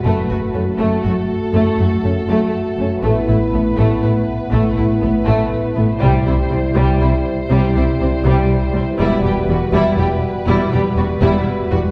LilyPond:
<<
  \new Staff \with { instrumentName = "Violin section" } { \time 12/8 \key fis \phrygian \tempo 4. = 81 b'4. a'1~ a'8 | b'1. | c''1. | b'1. | }
  \new Staff \with { instrumentName = "French horn section" } { \time 12/8 \key fis \phrygian << { fis'1. | e'1.~ | e'1. | fis'1. | } \\ { a1. | b1. | g1.~ | g1. | } >> }
  \new Staff \with { instrumentName = "Violin section" } { \time 12/8 \key fis \phrygian a8 fis'8 cis'8 a8 fis'8 r8 a8 fis'8 cis'8 a8 r8 cis'8 | a8 e'8 b8 a8 e'8 r8 a8 e'8 b8 a8 r8 b8 | g8 e'8 c'8 g8 e'8 r8 g8 e'8 c'8 g8 r8 c'8 | e'8 g'8 fis'8 e'8 g'8 r8 e'8 g'8 fis'8 e'8 r8 fis'8 | }
  \new Staff \with { instrumentName = "Viola section" } { \clef bass \time 12/8 \key fis \phrygian a8 a8 a8 a8 a8 r8 a8 a8 a8 a8 r8 a8 | a8 a8 a8 a8 a8 r8 a8 a8 a8 a8 r8 a8 | g8 g8 g8 g8 g8 r8 g8 g8 g8 g8 r8 g8 | g8 g8 g8 g8 g8 r8 g8 g8 g8 g8 r8 g8 | }
  \new Staff \with { instrumentName = "Cello section" } { \clef bass \time 12/8 \key fis \phrygian fis,8 fis,8 fis,8 fis,8 fis,8 r8 fis,8 fis,8 fis,8 fis,8 r8 fis,8 | a,8 a,8 a,8 a,8 a,8 r8 a,8 a,8 a,8 a,8 r8 a,8 | c8 c8 c8 c8 c8 r8 c8 c8 c8 c8 r8 c8 | e,8 e,8 e,8 e,8 e,8 r8 e,8 e,8 e,8 e,8 r8 e,8 | }
  \new Staff \with { instrumentName = "Double bass section" } { \clef bass \time 12/8 \key fis \phrygian fis,,8 fis,,8 fis,,8 fis,,8 fis,,8 r8 fis,,8 fis,,8 fis,,8 fis,,8 r8 fis,,8 | a,,8 a,,8 a,,8 a,,8 a,,8 r8 a,,8 a,,8 a,,8 a,,8 r8 a,,8 | c,8 c,8 c,8 c,8 c,8 r8 c,8 c,8 c,8 c,8 r8 c,8 | e,,8 e,,8 e,,8 e,,8 e,,8 r8 e,,8 e,,8 e,,8 e,,8 r8 e,,8 | }
>>